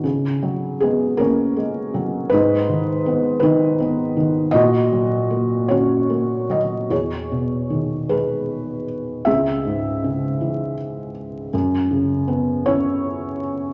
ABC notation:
X:1
M:6/8
L:1/8
Q:3/8=53
K:F#mix
V:1 name="Felt piano"
z2 [B,G] [CA]3 | [DB]3 [DB]3 | [Fd]3 [Fc]2 d | [Gc]3 [GB]3 |
[Ge]4 z2 | z3 [Ec]3 |]
V:2 name="Felt piano" clef=bass
C, F, G, A, G, F, | G,, D, B, D, B, D, | A,, F, A, C A, F, | E,, B,, D, G,3 |
C,, G,, C, E,3 | F,, C, B, C3 |]